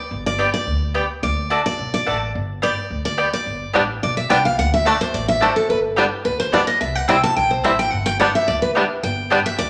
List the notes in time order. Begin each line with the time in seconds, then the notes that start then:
Already playing: D5
0.11 G1
0.26 D5
0.39 B3 G4 D5 G5
0.54 D5
0.67 D2
0.94 B3 G4 D5 G5
1.23 D2 D5
1.50 A3 F#4 D5 A5
1.66 D5
1.79 B1
1.94 D5
2.06 A1 A3 F#4 D5 A5
2.35 G1
2.62 B3 G4 D5 G5
2.90 D2
3.05 D5
3.18 B3 G4 D5 G5
3.33 D5
3.46 G1
3.73 A1 G3 B3 D4 G4 D5 G5
4.03 B1 D5
4.17 E5
4.30 C2 G3 B3 D4 G4 D5 G5
4.45 F5
4.58 D2 F#5
4.74 E5
4.85 A3 D4 F#4 D5 A5
5.01 C5
5.14 A1 D5
5.28 E5
5.40 A3 D4 F#4 C5 D5 A5
5.56 A4
5.69 G1 B4
5.96 G3 B3 D4 G4 D5 G5
6.25 D2 B4
6.40 C5
6.52 G3 B3 D4 G4 D5 G5
6.67 D#5
6.81 C2 E5
6.95 F#5
7.08 C2 G3 C4 E4 C5 G5
7.23 A5
7.36 B1 G5
7.51 C5
7.63 A1 G3 C4 E4 C5 E5 G5
7.79 G5
7.91 G1 F#5
8.06 G5
8.19 G3 B3 D4 G4 D5 F#5 G5
8.35 E5
8.48 D2 D5
8.62 B4
8.75 G3 B3 D4 G4 D5 G5
9.03 G1 G5
9.30 G3 B3 D4 G4 D5 G5
9.46 E5
9.58 D2 D5